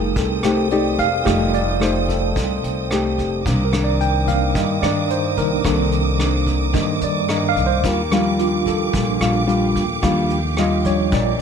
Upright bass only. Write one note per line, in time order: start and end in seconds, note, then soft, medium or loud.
0.00 0.12 F1 medium
0.16 0.41 C2 medium
0.44 0.95 C2 medium
0.98 1.24 F1 medium
1.26 2.32 F1 loud
2.36 2.61 C2 medium
2.63 3.14 C2 medium
3.18 3.47 F1 medium
3.46 4.51 C2 loud
4.55 4.81 G2 medium
4.82 5.33 G2 medium
5.37 5.63 C2 medium
5.64 6.70 C2 medium
6.74 7.00 G2 medium
7.02 7.53 G2 medium
7.56 7.84 C2 medium
7.84 8.90 D#2 loud
8.94 9.19 A#1 medium
9.21 9.72 A#1 medium
9.75 10.01 D#2 medium
10.03 11.09 D#2 loud
11.12 11.38 A#1 medium